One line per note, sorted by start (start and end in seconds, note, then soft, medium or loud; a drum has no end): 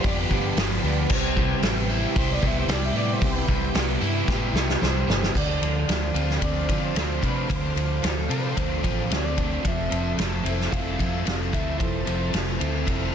0.00 0.29 G2 medium
0.00 0.30 G2 medium
0.00 0.28 D3 medium
0.00 0.56 F3 medium
0.00 0.30 B3 medium
0.00 0.61 B3 medium
0.00 1.12 B3 medium
0.00 0.30 D4 medium
0.00 1.10 F4 medium
0.00 1.06 G4 medium
0.00 2.16 G4 medium
0.00 1.06 F5 medium
0.00 1.05 B5 medium
0.04 0.25 F2 loud
0.04 0.19 D5 medium
0.04 kick loud
0.04 open hi-hat medium
0.19 0.32 B4 loud
0.30 0.51 G1 loud
0.30 0.83 D3 medium
0.30 0.84 B3 medium
0.30 1.10 D4 medium
0.30 0.48 G4 medium
0.30 kick medium
0.48 0.58 A4 medium
0.56 0.77 G1 medium
0.56 1.10 F3 medium
0.56 0.74 B4 medium
0.56 snare loud
0.56 open hi-hat medium
0.74 0.87 C5 loud
0.83 1.04 D2 loud
0.83 1.09 D3 medium
0.83 1.13 B3 medium
0.83 1.36 B3 medium
0.87 0.99 D5 loud
1.02 1.13 B4 medium
1.09 1.52 C2 loud
1.09 1.35 C3 medium
1.09 2.43 C3 medium
1.09 1.63 G3 medium
1.09 5.31 G4 medium
1.09 2.18 C5 loud
1.09 5.31 E5 medium
1.09 5.31 G5 medium
1.09 kick loud
1.09 crash loud
1.36 2.40 C3 medium
1.36 2.68 G3 medium
1.36 2.69 B3 medium
1.36 kick medium
1.62 2.04 A1 medium
1.62 2.67 G3 medium
1.62 2.41 B3 medium
1.62 snare loud
1.62 open hi-hat medium
1.89 3.22 E4 medium
1.89 3.23 E4 medium
1.89 2.41 E4 medium
2.15 2.37 C2 loud
2.15 3.49 B3 medium
2.15 3.49 G4 medium
2.15 2.32 C5 medium
2.15 kick loud
2.15 open hi-hat medium
2.32 2.45 D5 medium
2.41 2.63 C2 medium
2.41 2.93 C3 medium
2.41 2.95 B3 medium
2.41 3.75 E4 medium
2.41 kick medium
2.47 2.59 E5 loud
2.60 2.71 C5 medium
2.68 2.89 C2 loud
2.68 3.73 G3 medium
2.68 3.47 G3 medium
2.68 3.22 G3 medium
2.68 snare loud
2.68 open hi-hat medium
2.73 2.85 D5 medium
2.85 2.97 E5 loud
2.93 3.15 A2 loud
2.93 3.20 C3 medium
2.93 3.48 B3 medium
2.93 3.73 B3 medium
2.93 3.13 D5 loud
3.13 3.24 C5 medium
3.21 3.43 C2 loud
3.21 3.46 C3 medium
3.21 4.56 C3 medium
3.21 3.74 G3 medium
3.21 4.79 B4 medium
3.21 kick loud
3.21 open hi-hat medium
3.48 3.69 C2 loud
3.48 4.53 C3 medium
3.48 4.80 G3 medium
3.48 4.82 B3 medium
3.48 kick medium
3.74 3.96 C2 medium
3.74 4.80 G3 medium
3.74 4.53 B3 medium
3.74 snare loud
3.74 open hi-hat medium
4.00 4.22 G2 medium
4.00 5.34 E4 medium
4.00 5.35 E4 medium
4.00 4.54 E4 medium
4.28 4.49 A2 loud
4.28 5.35 B3 medium
4.28 5.35 G4 medium
4.28 5.36 G4 medium
4.28 kick loud
4.28 snare medium
4.53 4.74 C2 medium
4.53 5.07 C3 medium
4.53 5.06 B3 medium
4.53 5.35 E4 medium
4.53 snare medium
4.69 snare medium
4.81 5.03 C2 loud
4.81 5.35 G3 medium
4.81 5.37 C5 medium
4.81 snare loud
5.07 5.29 G1 loud
5.07 5.35 C3 medium
5.07 5.35 B3 medium
5.07 snare loud
5.23 snare medium
5.33 5.58 D2 medium
5.33 6.68 D3 medium
5.33 5.61 D3 medium
5.33 6.40 F3 medium
5.33 9.61 C5 medium
5.33 9.61 F5 medium
5.33 9.61 D6 medium
5.33 kick loud
5.33 crash loud
5.38 6.43 D5 medium
5.61 5.85 D2 medium
5.61 6.96 D3 medium
5.61 5.87 F3 medium
5.61 6.93 A4 medium
5.61 ride medium
5.88 6.11 D2 medium
5.88 6.67 F3 medium
5.88 7.21 A3 medium
5.88 7.20 D4 medium
5.88 snare loud
5.88 ride medium
6.14 6.38 D2 medium
6.14 6.95 C4 medium
6.14 6.67 C4 medium
6.14 6.68 F4 medium
6.14 ride medium
6.30 snare soft
6.41 6.65 D2 medium
6.41 7.48 F3 medium
6.41 6.94 C4 medium
6.41 7.20 D4 medium
6.41 6.84 D5 medium
6.41 kick medium
6.41 ride medium
6.67 6.92 D3 medium
6.67 7.75 F3 medium
6.67 8.05 C4 medium
6.67 8.30 F4 medium
6.67 kick medium
6.67 ride medium
6.85 7.21 C5 medium
6.93 7.18 D2 medium
6.93 8.56 C4 medium
6.93 8.29 C4 medium
6.93 7.74 A4 medium
6.93 snare loud
6.93 ride medium
7.21 7.45 C3 medium
7.21 8.02 A3 medium
7.21 8.01 D4 medium
7.21 8.54 D4 medium
7.21 kick medium
7.21 ride medium
7.25 7.49 B4 medium
7.48 7.72 D2 medium
7.48 7.74 D3 medium
7.48 8.83 D3 medium
7.48 8.55 F3 medium
7.48 8.05 C5 medium
7.48 kick loud
7.48 ride medium
7.75 7.99 D2 medium
7.75 9.10 D3 medium
7.75 8.02 F3 medium
7.75 9.09 A4 medium
7.75 ride medium
8.02 8.26 D2 medium
8.02 8.82 F3 medium
8.02 9.38 A3 medium
8.02 9.35 D4 medium
8.02 8.31 A4 medium
8.02 snare loud
8.02 ride medium
8.29 8.53 C3 medium
8.29 9.10 C4 medium
8.29 8.82 C4 medium
8.29 8.83 F4 medium
8.29 9.13 C5 loud
8.29 ride medium
8.56 8.80 D2 medium
8.56 9.63 F3 medium
8.56 9.10 C4 medium
8.56 9.36 D4 medium
8.56 kick medium
8.56 ride medium
8.82 9.07 A1 medium
8.82 9.62 F3 medium
8.82 10.45 C4 medium
8.82 10.45 F4 medium
8.82 kick medium
8.82 ride medium
9.10 9.57 D2 medium
9.10 10.72 C4 medium
9.10 9.90 C4 medium
9.10 9.90 A4 medium
9.10 snare loud
9.10 ride medium
9.14 9.67 D5 medium
9.36 10.18 A3 medium
9.36 9.64 D4 medium
9.36 kick medium
9.36 ride medium
9.63 9.87 F1 medium
9.63 10.17 F3 medium
9.63 10.72 F3 medium
9.63 9.91 F3 medium
9.63 13.15 A4 medium
9.63 13.15 A5 medium
9.63 11.78 E6 medium
9.63 kick loud
9.63 ride medium
9.68 10.72 E5 loud
9.90 10.14 F1 medium
9.90 11.78 F3 medium
9.90 10.42 C4 medium
9.90 11.24 A4 medium
9.90 ride medium
10.17 10.41 F1 medium
10.17 10.97 F3 medium
10.17 11.51 A3 medium
10.17 snare loud
10.17 ride medium
10.43 10.68 F1 medium
10.43 11.24 C4 medium
10.43 10.98 C4 medium
10.43 10.97 E4 medium
10.43 ride medium
10.61 snare soft
10.70 10.95 F1 medium
10.70 11.79 F3 medium
10.70 11.24 C4 medium
10.70 11.52 E4 medium
10.70 11.54 F5 loud
10.70 kick medium
10.70 ride medium
10.98 11.22 F2 medium
10.98 11.78 F3 medium
10.98 12.34 C4 medium
10.98 12.33 E4 medium
10.98 kick medium
10.98 ride medium
11.25 11.49 F1 medium
11.25 12.60 C4 medium
11.25 12.04 C4 medium
11.25 12.06 A4 medium
11.25 snare loud
11.25 ride medium
11.52 11.76 D2 medium
11.52 12.32 A3 medium
11.52 12.32 E4 medium
11.52 12.85 E4 medium
11.52 11.79 E5 loud
11.52 kick medium
11.52 ride medium
11.78 12.03 F1 medium
11.78 12.06 F3 medium
11.78 12.31 F3 medium
11.78 12.86 F3 medium
11.78 12.29 C5 medium
11.78 13.15 F6 medium
11.78 kick loud
11.78 ride medium
12.06 12.30 F1 medium
12.06 13.15 F3 medium
12.06 12.59 C4 medium
12.06 13.15 A4 medium
12.06 ride medium
12.32 12.56 F1 medium
12.32 13.13 F3 medium
12.32 13.15 A3 medium
12.32 13.15 E4 medium
12.32 snare loud
12.32 ride medium
12.59 12.84 D2 medium
12.59 13.11 C4 medium
12.59 13.15 C4 medium
12.59 13.12 E4 medium
12.59 ride medium
12.85 13.10 F1 medium
12.85 13.15 F3 medium
12.85 13.15 C4 medium
12.85 13.15 E4 medium
12.85 kick medium
12.85 ride medium